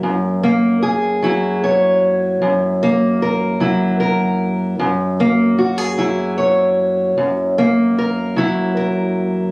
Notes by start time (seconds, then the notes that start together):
Already playing: F#3 A#3 A#4
0.03 F#2
0.43 A#3
0.83 G#4
1.23 F#3 E4
1.64 C#5
2.42 F#2
2.83 A#3
3.22 A#4
3.60 F#3 E4
4.00 A#4
4.79 F#2
5.20 A#3
5.59 F#4
5.78 G#4
5.97 F#3 E4
6.38 C#5
7.18 F#2
7.58 A#3
7.98 A#4
8.36 F#3 E4
8.77 A#4